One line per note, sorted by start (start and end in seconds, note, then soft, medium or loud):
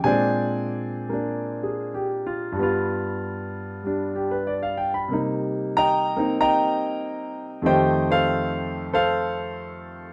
0.04 2.57 A#2 soft
0.04 2.58 G#3 soft
0.04 2.58 C4 soft
0.04 1.11 D4 medium
0.04 1.91 C5 medium
0.04 1.91 D5 medium
0.04 1.90 G#5 medium
1.09 2.57 A#3 soft
1.09 2.58 D4 medium
1.63 2.07 G#4 soft
1.94 2.44 G4 soft
2.27 2.61 F4 medium
2.52 5.08 G2 medium
2.52 3.82 G3 medium
2.59 5.12 B3 medium
2.59 5.13 F4 medium
3.83 5.08 G3 soft
3.83 5.12 D4 soft
4.15 4.35 G4 soft
4.31 4.53 B4 soft
4.47 4.78 D5 medium
4.63 4.91 F5 medium
4.77 4.98 G5 medium
4.94 5.17 B5 medium
5.08 7.63 C3 soft
5.08 7.64 G3 soft
5.08 6.15 A#3 soft
5.13 6.17 D#4 soft
5.77 6.40 D#5 medium
5.77 6.40 G5 medium
5.77 6.35 A#5 loud
6.16 7.63 A#3 soft
6.16 7.64 C4 soft
6.16 7.65 D#4 medium
6.41 7.62 D#5 medium
6.41 7.62 G5 medium
6.41 7.62 A#5 medium
7.62 10.13 F2 medium
7.62 10.13 D#3 medium
7.62 10.13 A3 medium
7.66 10.13 G4 medium
7.66 8.09 C5 medium
7.66 8.88 D#5 medium
7.66 8.10 G5 medium
8.11 8.92 A4 medium
8.11 8.92 C5 medium
8.11 8.89 F5 medium
8.93 10.13 A4 medium
8.93 10.13 C5 medium
8.93 10.13 F5 medium